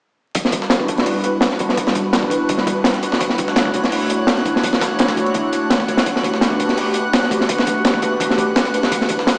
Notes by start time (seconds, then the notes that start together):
0.35 G3 D4 E4 F#4 B4 F#5 F#6, kick, closed hi-hat
0.45 snare
0.52 kick, closed hi-hat
0.62 snare
0.70 snare, closed hi-hat
0.80 kick
0.88 kick, closed hi-hat
0.98 snare, closed hi-hat
1.06 closed hi-hat, open hi-hat
1.24 closed hi-hat
1.41 snare, closed hi-hat
1.51 snare, closed hi-hat
1.59 kick, closed hi-hat
1.69 snare
1.77 G3 D4 E4 F#4 B4, kick, closed hi-hat
1.87 snare
1.95 kick, closed hi-hat
2.13 snare, closed hi-hat
2.23 kick
2.30 kick, closed hi-hat
2.49 kick, closed hi-hat
2.58 snare
2.67 kick, closed hi-hat
2.84 snare, closed hi-hat
2.93 snare, closed hi-hat
3.03 closed hi-hat
3.12 snare
3.20 A3 D4 E4 F#4 C#5, kick, closed hi-hat
3.29 snare
3.38 kick, closed hi-hat
3.48 snare
3.56 snare, closed hi-hat
3.65 kick
3.74 kick, closed hi-hat
3.84 snare, closed hi-hat
3.92 closed hi-hat, open hi-hat
4.09 closed hi-hat
4.27 snare, closed hi-hat
4.37 snare, closed hi-hat
4.46 kick, closed hi-hat
4.56 snare
4.63 A3 D4 E4 F#4 C#5, kick, closed hi-hat
4.73 snare
4.81 kick, snare, closed hi-hat
4.99 snare, closed hi-hat
5.08 kick, snare, closed hi-hat
5.17 kick, closed hi-hat
5.26 closed hi-hat
5.34 kick, closed hi-hat
5.53 closed hi-hat
5.70 snare, closed hi-hat
5.80 kick, snare
5.88 kick, closed hi-hat
5.97 snare, closed hi-hat
6.06 A3 D4 F#4 G4 B4, kick, closed hi-hat
6.16 snare
6.24 kick, closed hi-hat
6.34 snare
6.41 snare, closed hi-hat
6.50 kick
6.60 kick, closed hi-hat
6.69 snare, closed hi-hat
6.77 closed hi-hat, open hi-hat
6.94 closed hi-hat
6.96 closed hi-hat
7.13 snare, closed hi-hat
7.23 snare, closed hi-hat
7.31 kick, closed hi-hat
7.41 snare
7.49 A3 D4 F#4 G4 B4, kick, closed hi-hat
7.58 snare
7.67 kick, closed hi-hat
7.85 snare, closed hi-hat
7.94 kick
8.02 kick, closed hi-hat
8.20 kick, closed hi-hat
8.30 snare
8.38 kick, closed hi-hat
8.56 snare, closed hi-hat
8.65 snare, closed hi-hat
8.74 closed hi-hat
8.83 snare
8.92 G3 C#4 E4 F#4 B4, kick, closed hi-hat
9.01 snare
9.09 kick, closed hi-hat
9.19 snare
9.27 snare, closed hi-hat